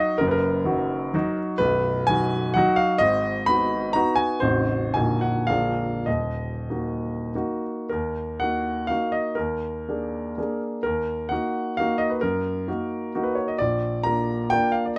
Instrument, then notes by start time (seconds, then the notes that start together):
grand piano
Already playing: F#3 D#4 F#4 D#5
0.18 F#1 F#2 A#4
0.28 A#4 B4
0.65 F#3 D#4 F#4
1.14 F#3 D#4 F#4
1.58 B0 B1 B4
2.07 F#3 D#4 F#4 G#5
2.54 F#3 D#4 F#5
2.58 F#4
2.76 F5
2.98 G#1 G#2 D#5
3.46 B3 D#4 F#4 B5
3.93 B3 D#4 F#4 A#5
4.16 G#5
4.40 A0 A1 C4 D#4 F#4 C5
4.94 A#0 A#1 A#3 D#4 F#4 G#5
5.21 F#5
5.47 A#0 A#1 A#3 D4 G#4 F5
6.06 D#1 D#2 D#5
6.70 A#3 D#4 F#4
7.35 A#3 D#4 F#4
7.89 D#2 A#4
8.40 A#3 D#4 F#4 F#5
8.87 A#3 D#4 F#4 F5
9.12 D#5
9.35 D#2 A#4
9.89 A#3 D4 G#4
10.38 A#3 D4 G#4
10.83 D#2 A#4
11.29 A#3 D#4 F#4 F#5
11.77 A#3 D#4 F#4 F5
11.98 D#5
12.10 B4
12.21 F#2 A#4
12.68 A#3 D#4 F#4
13.15 A#3 D#4 F#4
13.23 B4
13.35 C#5
13.48 D#5
13.59 A#1 D5
14.03 A#3 D4 F4 A#5
14.50 A#3 D4 F4 G5
14.72 F5
14.86 D5